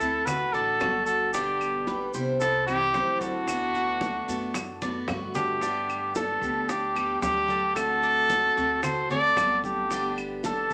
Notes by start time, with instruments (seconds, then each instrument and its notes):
Already playing: flugelhorn E4, trumpet A4
0.00 upright bass D2, steel-string acoustic guitar A3 C4 E4, cuban tres A4, high bongo, high conga, maracas
0.25 flugelhorn F#4, trumpet B4, muted steel-string acoustic guitar stroke, high bongo, high conga, low conga, claves, maracas
0.53 upright bass A1, steel-string acoustic guitar A3 D4 F#4, flugelhorn F#4, trumpet A4, cuban tres D5, high bongo, high conga, maracas
0.80 upright bass G1, steel-string acoustic guitar D3 A3 D4 F#4, cuban tres F#4, high bongo, low bongo, high conga, claves, maracas
1.06 flugelhorn F#4, trumpet A4, high conga, maracas
1.33 steel-string acoustic guitar B2 D3 G3 B3 G4, flugelhorn D4, cuban tres D4, trumpet G4, high bongo, high conga, maracas
1.61 high conga, claves, maracas
1.87 steel-string acoustic guitar D3 G3 B3 G4, cuban tres B4, high bongo, high conga, maracas
2.14 upright bass C2, steel-string acoustic guitar D3 G3 B3 G4, cuban tres C5, high bongo, maracas
2.40 flugelhorn E4, trumpet A4, muted steel-string acoustic guitar stroke, high bongo, high conga, maracas
2.67 steel-string acoustic guitar E3 G3 C4 E4, cuban tres E4, flugelhorn E4, trumpet G4, high bongo, high conga, claves, maracas
2.94 upright bass D2, steel-string acoustic guitar E3 G3 C4 E4, cuban tres C5, high bongo, low bongo, high conga, maracas
3.20 flugelhorn D4, trumpet F#4, cuban tres A4, high bongo, high conga, maracas
3.47 steel-string acoustic guitar D3 A3 B3 F#4, high bongo, high conga, claves, maracas
3.74 cuban tres F#4, high bongo, high conga, maracas
4.01 steel-string acoustic guitar D3 A3 B3 F#4, high bongo, high conga, maracas
4.28 upright bass F#2, steel-string acoustic guitar A3 B3 F#4, cuban tres A4, high bongo, high conga, maracas
4.54 muted steel-string acoustic guitar stroke, high bongo, high conga, claves, maracas
4.81 steel-string acoustic guitar A3 B3 F#4, cuban tres D5, high bongo, high conga, maracas
5.08 upright bass G2, steel-string acoustic guitar D3 A3 B3 F#4, cuban tres F#4, high bongo, low bongo, claves, maracas
5.35 flugelhorn D4, trumpet G4, low conga, maracas
5.61 steel-string acoustic guitar D3 G3 B3 G4, cuban tres D4, high bongo, high conga, maracas
5.89 high conga, claves, maracas
6.15 steel-string acoustic guitar D3 G3 B3 G4, flugelhorn D4, cuban tres A4, trumpet A4, high bongo, high conga, maracas
6.41 upright bass D2, steel-string acoustic guitar G3 B3 G4, high conga, maracas
6.69 flugelhorn D4, cuban tres D4, trumpet G4, muted steel-string acoustic guitar stroke, high bongo, high conga, maracas
6.95 steel-string acoustic guitar G3 B3 G4, cuban tres G4, high conga, claves, maracas
7.22 upright bass D2, steel-string acoustic guitar D3 G3 B3 G4, flugelhorn D4, trumpet G4, high bongo, low bongo, high conga, maracas
7.48 cuban tres A4, high conga, maracas
7.75 steel-string acoustic guitar D3 A3 C4 F#4, flugelhorn F#4, trumpet A4, high bongo, high conga, claves, maracas
8.02 cuban tres D4, high conga, maracas
8.30 steel-string acoustic guitar D3 A3 C4 F#4, high bongo, high conga, maracas
8.56 upright bass D2, steel-string acoustic guitar A3 C4 F#4, cuban tres F#4, high bongo, high conga, maracas
8.83 flugelhorn A4, trumpet C5, muted steel-string acoustic guitar stroke, high bongo, high conga, low conga, claves, maracas
9.10 steel-string acoustic guitar A3 C4 F#4, flugelhorn A4, cuban tres D5, trumpet D5, high bongo, high conga, low conga, maracas
9.36 upright bass G1, steel-string acoustic guitar D3 A3 C4 F#4, cuban tres A4, high bongo, low bongo, high conga, claves, maracas
9.64 flugelhorn D4, trumpet G4, high bongo, high conga, maracas
9.90 steel-string acoustic guitar D3 G3 B3 G4, cuban tres D4, high bongo, high conga, maracas
10.18 high conga, claves, maracas
10.43 steel-string acoustic guitar D3 G3 B3 G4, flugelhorn D4, cuban tres A4, trumpet A4, high bongo, high conga, maracas
10.70 steel-string acoustic guitar G4, maracas